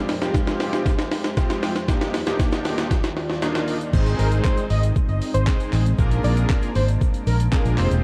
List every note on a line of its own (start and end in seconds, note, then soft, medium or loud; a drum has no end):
0.00 1.86 F2 medium
0.00 1.84 F3 medium
0.00 1.86 G#3 medium
0.00 1.86 G4 medium
0.00 1.86 C5 medium
0.09 snare loud
0.09 open hi-hat medium
0.09 shaker medium
0.21 0.92 G#3 medium
0.21 0.92 C4 medium
0.21 0.92 F4 medium
0.21 0.92 G4 loud
0.21 snare loud
0.21 closed hi-hat medium
0.21 shaker medium
0.34 kick loud
0.34 snare loud
0.34 closed hi-hat medium
0.34 shaker medium
0.47 snare loud
0.47 closed hi-hat medium
0.47 shaker medium
0.60 snare loud
0.60 open hi-hat medium
0.60 shaker medium
0.73 snare loud
0.73 closed hi-hat medium
0.73 shaker medium
0.86 kick loud
0.86 snare loud
0.86 closed hi-hat medium
0.86 shaker medium
0.98 snare loud
0.98 closed hi-hat medium
0.98 shaker soft
1.11 snare loud
1.11 open hi-hat medium
1.11 shaker medium
1.24 snare loud
1.24 closed hi-hat medium
1.24 shaker medium
1.37 1.72 G#3 medium
1.37 1.72 C4 medium
1.37 1.72 F4 medium
1.37 1.72 G4 loud
1.37 kick loud
1.37 snare loud
1.37 closed hi-hat medium
1.37 shaker medium
1.50 snare loud
1.50 closed hi-hat soft
1.50 shaker medium
1.63 snare loud
1.63 open hi-hat medium
1.63 shaker soft
1.76 snare loud
1.76 closed hi-hat medium
1.76 shaker medium
1.88 3.92 D#2 medium
1.88 3.92 D#3 medium
1.88 3.92 G3 medium
1.88 2.15 A#3 medium
1.88 2.15 D4 medium
1.88 2.15 D#4 medium
1.88 3.92 F4 medium
1.88 2.15 G4 loud
1.88 3.92 D5 medium
1.88 kick loud
1.88 snare loud
1.88 closed hi-hat medium
1.88 shaker medium
2.01 snare loud
2.01 closed hi-hat medium
2.01 shaker medium
2.01 shaker soft
2.14 snare loud
2.14 open hi-hat medium
2.14 shaker medium
2.26 2.97 A#3 medium
2.26 2.97 D4 medium
2.26 2.97 D#4 medium
2.26 2.97 G4 loud
2.26 snare loud
2.26 closed hi-hat medium
2.26 shaker medium
2.40 kick loud
2.40 snare loud
2.40 closed hi-hat medium
2.40 shaker medium
2.52 snare loud
2.52 closed hi-hat medium
2.52 shaker medium
2.65 snare loud
2.65 open hi-hat medium
2.65 shaker medium
2.78 snare loud
2.78 closed hi-hat medium
2.78 shaker medium
2.91 kick loud
2.91 snare loud
2.91 closed hi-hat medium
2.91 shaker medium
3.04 snare loud
3.04 closed hi-hat medium
3.04 shaker medium
3.17 snare loud
3.17 open hi-hat medium
3.17 shaker soft
3.17 shaker medium
3.30 snare loud
3.30 closed hi-hat medium
3.30 shaker medium
3.42 3.77 A#3 medium
3.42 3.77 D4 medium
3.42 3.77 D#4 medium
3.42 3.77 F4 loud
3.42 snare loud
3.42 closed hi-hat medium
3.42 shaker medium
3.55 snare loud
3.55 closed hi-hat soft
3.55 shaker medium
3.68 open hi-hat medium
3.68 shaker medium
3.81 closed hi-hat soft
3.81 shaker medium
3.93 4.13 G#1 loud
3.93 4.64 G#3 loud
3.93 5.97 G#3 medium
3.93 5.96 C4 medium
3.93 4.64 C4 medium
3.93 4.64 D#4 medium
3.93 5.97 D#4 medium
3.93 4.64 G#4 medium
3.93 4.64 C5 loud
3.93 kick loud
3.93 crash loud
3.93 shaker medium
4.06 closed hi-hat medium
4.06 shaker medium
4.06 shaker soft
4.19 4.39 G#1 loud
4.19 4.29 A#4 medium
4.19 open hi-hat medium
4.19 shaker medium
4.32 closed hi-hat medium
4.32 shaker medium
4.44 4.64 C5 medium
4.44 kick loud
4.44 snare loud
4.44 clap loud
4.44 shaker medium
4.57 closed hi-hat medium
4.57 shaker medium
4.70 4.90 G#1 loud
4.70 4.80 D#5 medium
4.70 open hi-hat medium
4.70 shaker medium
4.83 closed hi-hat medium
4.83 shaker medium
4.96 kick loud
4.96 shaker medium
5.09 5.19 G1 medium
5.09 5.18 D#5 medium
5.09 closed hi-hat medium
5.09 shaker medium
5.22 open hi-hat medium
5.22 shaker medium
5.22 shaker soft
5.34 5.44 G#1 medium
5.34 5.44 C5 medium
5.34 closed hi-hat medium
5.34 shaker medium
5.47 5.82 G#3 medium
5.47 5.82 C4 medium
5.47 5.82 D#4 medium
5.47 5.83 G#4 medium
5.47 5.83 C5 medium
5.47 kick loud
5.47 snare medium
5.47 clap loud
5.47 shaker medium
5.60 closed hi-hat soft
5.60 shaker soft
5.73 5.93 A1 loud
5.73 clap medium
5.73 open hi-hat medium
5.73 shaker medium
5.86 closed hi-hat medium
5.86 shaker medium
5.98 6.19 A#1 loud
5.98 8.04 G#3 medium
5.98 6.69 A#3 loud
5.98 7.76 A#3 medium
5.98 6.69 D4 medium
5.98 7.76 D4 medium
5.98 6.69 F4 medium
5.98 6.69 G#4 medium
5.98 6.69 A#4 loud
5.98 kick loud
5.98 shaker medium
6.11 closed hi-hat medium
6.11 shaker medium
6.24 6.44 A#1 loud
6.24 6.34 D5 medium
6.24 open hi-hat medium
6.24 shaker medium
6.37 closed hi-hat medium
6.37 shaker medium
6.49 kick loud
6.49 snare loud
6.49 clap loud
6.49 shaker medium
6.62 closed hi-hat medium
6.62 shaker medium
6.75 6.95 G#1 medium
6.75 6.85 C5 medium
6.75 open hi-hat medium
6.75 shaker medium
6.88 closed hi-hat medium
6.88 shaker medium
7.01 kick loud
7.01 shaker medium
7.14 closed hi-hat medium
7.14 shaker medium
7.14 shaker soft
7.27 7.47 A#1 loud
7.27 7.36 A#4 medium
7.27 open hi-hat medium
7.27 shaker medium
7.27 shaker soft
7.40 closed hi-hat medium
7.40 shaker medium
7.52 7.78 A#3 loud
7.52 7.78 D4 medium
7.52 7.77 F4 medium
7.52 7.77 G#4 medium
7.52 7.78 A#4 loud
7.52 kick loud
7.52 snare medium
7.52 clap loud
7.52 shaker medium
7.65 7.75 A#1 loud
7.65 closed hi-hat soft
7.65 shaker soft
7.78 7.88 F1 loud
7.78 8.04 C4 medium
7.78 8.04 F4 medium
7.78 8.04 G4 medium
7.78 8.04 G#4 medium
7.78 7.88 C5 medium
7.78 8.04 C5 medium
7.78 8.04 G5 medium
7.78 clap medium
7.78 open hi-hat medium
7.78 shaker medium
7.78 shaker soft
7.91 8.01 E1 loud
7.91 closed hi-hat medium
7.91 shaker medium